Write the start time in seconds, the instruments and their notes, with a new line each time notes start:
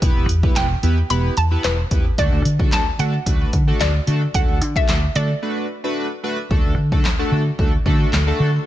0.02 fingered electric bass E1, analog polysynth B3 E4 G4 B4, kick, closed hi-hat
0.16 fingered electric bass E1
0.29 fingered electric bass E2, closed hi-hat
0.43 analog polysynth B3 E4 G4 B4, kick
0.56 fingered electric bass E1, synth pluck G5, snare, clap, closed hi-hat
0.83 fingered electric bass E2, analog polysynth B3 E4 G4 B4, closed hi-hat
1.10 fingered electric bass E1, analog polysynth B3 E4 G4 B4, synth pluck B5, closed hi-hat
1.37 fingered electric bass E2, synth pluck A5, closed hi-hat
1.51 analog polysynth B3 E4 G4 B4
1.64 fingered electric bass E1, synth pluck B4, snare, clap, closed hi-hat
1.91 fingered electric bass E2, analog polysynth B3 E4 G4 B4, kick, closed hi-hat
2.18 fingered electric bass D2, analog polysynth A3 D4 F#4 A4, synth pluck D5, kick, closed hi-hat
2.32 fingered electric bass D2
2.45 fingered electric bass D3, closed hi-hat
2.59 analog polysynth A3 D4 F#4 A4, kick
2.72 fingered electric bass D2, synth pluck A5, snare, clap, closed hi-hat
2.99 fingered electric bass D3, analog polysynth A3 D4 F#4 A4, synth pluck F#5, closed hi-hat
3.26 fingered electric bass D2, analog polysynth A3 D4 F#4 B4, kick, closed hi-hat
3.53 fingered electric bass D3, kick, closed hi-hat
3.67 analog polysynth A3 D4 F#4 A4
3.80 fingered electric bass D2, synth pluck D5, snare, clap, closed hi-hat
4.07 fingered electric bass D3, analog polysynth A3 D4 F#4 A4, closed hi-hat
4.34 fingered electric bass D2, analog polysynth A3 D4 F#4 A4, synth pluck F#5, kick, closed hi-hat
4.49 fingered electric bass D2
4.61 fingered electric bass D3, closed hi-hat
4.75 analog polysynth A3 D4 F#4 A4, synth pluck E5, kick
4.88 fingered electric bass D2, snare, clap, closed hi-hat
5.15 fingered electric bass D3, analog polysynth A3 D4 F#4 A4, synth pluck D5, closed hi-hat
5.42 analog polysynth A3 D4 F#4 B4
5.84 analog polysynth A3 D4 F#4 B4
6.23 analog polysynth A3 D4 F#4 B4
6.50 fingered electric bass D2, ambient pad D3 D4 F#4 A4, analog polysynth A3 D4 F#4 A4, kick
6.65 fingered electric bass D2
6.78 fingered electric bass D3
6.92 analog polysynth A3 D4 F#4 A4, kick
7.05 fingered electric bass D2, snare, clap
7.19 analog polysynth A3 D4 F#4 A4
7.32 fingered electric bass D3
7.59 fingered electric bass D2, analog polysynth A3 D4 F#4 A4, kick
7.86 fingered electric bass D3, analog polysynth A3 D4 F#4 A4, kick
8.13 fingered electric bass D2, snare, clap
8.27 analog polysynth A3 D4 F#4 A4
8.40 fingered electric bass D3